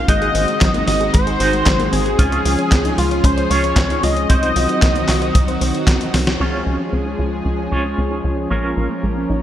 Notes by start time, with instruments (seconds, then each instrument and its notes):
0.08 analog synth bass G#1, analog synth pad D#3 G#3 C4 F#4, synth arpeggio sound G#3, clean electric guitar D#4 F#4 G#4 C5, analog synth lead D#5, kick, closed hi-hat
0.22 synth arpeggio sound G#4, closed hi-hat
0.35 analog synth bass G#1, synth arpeggio sound C4, open hi-hat
0.48 synth arpeggio sound G#3, closed hi-hat
0.61 analog synth bass G#1, synth arpeggio sound F#3, kick, snare, clap, closed hi-hat
0.74 synth arpeggio sound A#3, closed hi-hat
0.87 analog synth bass G#1, synth arpeggio sound C4, analog synth lead D#5, snare, open hi-hat
1.01 synth arpeggio sound G#4, closed hi-hat
1.14 analog synth bass G#1, synth arpeggio sound G#3, analog synth lead C5, kick, closed hi-hat
1.27 synth arpeggio sound G#4, closed hi-hat
1.40 analog synth bass G#1, synth arpeggio sound C4, clean electric guitar D#4 F#4 G#4 C5, open hi-hat
1.53 synth arpeggio sound G#3, closed hi-hat
1.66 analog synth bass G#1, synth arpeggio sound F#3, kick, snare, clap, closed hi-hat
1.79 synth arpeggio sound A#3, closed hi-hat
1.92 analog synth bass G#1, synth arpeggio sound C4, analog synth lead G#4, open hi-hat
2.06 synth arpeggio sound G#4, closed hi-hat
2.19 analog synth bass C#2, analog synth pad F3 C#4 G#4, clean electric guitar C#4 F4 G#4 C#5, synth arpeggio sound C#4, kick, closed hi-hat
2.32 synth arpeggio sound C#5, closed hi-hat
2.45 analog synth bass C#2, synth arpeggio sound F4, open hi-hat
2.59 synth arpeggio sound C#4, closed hi-hat
2.72 analog synth bass C#2, synth arpeggio sound C4, kick, snare, clap, closed hi-hat
2.85 synth arpeggio sound D#4, closed hi-hat
2.98 analog synth bass C#2, analog synth lead F4, synth arpeggio sound F4, open hi-hat
3.11 synth arpeggio sound C#5, closed hi-hat
3.24 analog synth bass C#2, synth arpeggio sound C#4, analog synth lead C5, kick, closed hi-hat
3.37 synth arpeggio sound C#5, closed hi-hat
3.50 analog synth bass C#2, clean electric guitar C#4 F4 G#4 C#5, synth arpeggio sound F4, analog synth lead C#5, open hi-hat
3.64 synth arpeggio sound C#4, closed hi-hat
3.76 analog synth bass C#2, synth arpeggio sound C4, kick, snare, clap, closed hi-hat
3.90 synth arpeggio sound D#4, closed hi-hat
4.03 analog synth bass C#2, synth arpeggio sound F4, analog synth lead D#5, open hi-hat
4.16 synth arpeggio sound C#5, closed hi-hat
4.29 analog synth bass C2, analog synth pad D#3 F#3 C4 F#4, clean electric guitar C4 D#4 F#4 C5, synth arpeggio sound C4, kick, closed hi-hat
4.43 synth arpeggio sound C5, closed hi-hat
4.56 analog synth bass C2, synth arpeggio sound F4, open hi-hat
4.69 synth arpeggio sound C4, closed hi-hat
4.82 analog synth bass C2, synth arpeggio sound A#3, kick, snare, clap, closed hi-hat
4.95 synth arpeggio sound C4, closed hi-hat
5.09 analog synth bass C2, synth arpeggio sound F4, snare, clap, open hi-hat
5.22 synth arpeggio sound C5, closed hi-hat
5.35 analog synth bass C2, synth arpeggio sound C4, kick, closed hi-hat
5.48 synth arpeggio sound C5, closed hi-hat
5.61 analog synth bass C2, synth arpeggio sound C4, open hi-hat
5.74 synth arpeggio sound C4, closed hi-hat
5.87 analog synth bass C2, synth arpeggio sound C4, kick, snare, clap, closed hi-hat
6.01 synth arpeggio sound C4, closed hi-hat
6.14 analog synth bass C2, synth arpeggio sound C4, snare, open hi-hat
6.27 synth arpeggio sound F#3, snare, closed hi-hat
6.40 analog synth bass C#2, analog synth pad F3 G#3 C#4 G#4, clean electric guitar C#4 F4 G#4 C#5, synth arpeggio sound C#4, crash
6.53 synth arpeggio sound C#5
6.66 analog synth bass C#2, synth arpeggio sound F4
6.80 synth arpeggio sound C#4
6.93 analog synth bass C#2, synth arpeggio sound C4
7.06 synth arpeggio sound D#4
7.19 analog synth bass C#2, synth arpeggio sound F4
7.32 synth arpeggio sound C#5
7.45 analog synth bass C#2, synth arpeggio sound C#4
7.59 synth arpeggio sound C#5
7.71 analog synth bass C#2, clean electric guitar C#4 F4 G#4 C#5, synth arpeggio sound F4
7.85 synth arpeggio sound C#4
7.98 analog synth bass C#2, synth arpeggio sound C4
8.11 synth arpeggio sound D#4
8.24 analog synth bass C#2, synth arpeggio sound F4
8.38 synth arpeggio sound C#5
8.50 analog synth bass A#1, analog synth pad F3 A#3 A#4, synth arpeggio sound A#3, clean electric guitar C#4 F4 A#4 C#5
8.64 synth arpeggio sound A#4
8.77 analog synth bass A#1, synth arpeggio sound D#4
8.90 synth arpeggio sound A#3
9.03 analog synth bass A#1, synth arpeggio sound G#3
9.16 synth arpeggio sound C4
9.30 analog synth bass A#1, synth arpeggio sound D#4